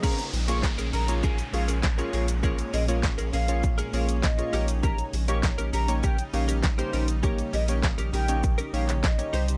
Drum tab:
CC |x---------------|----------------|----------------|----------------|
HH |-xox-xox-xox-xox|-xox-xox-xox-xox|-xox-xox-xox-xox|-xox-xox-xox-xox|
SH |xxxxxxxxxxxxxxxx|xxxxxxxxxxxxxxxx|xxxxxxxxxxxxxxxx|xxxxxxxxxxxxxxxx|
CP |----x-------x---|----x-------x---|----x-------x---|----x------xx---|
SD |----o-------o---|----o-------o---|----o-------o---|----o-------o---|
BD |o---o---o---o---|o---o---o---o---|o---o---o---o---|o---o---o---o---|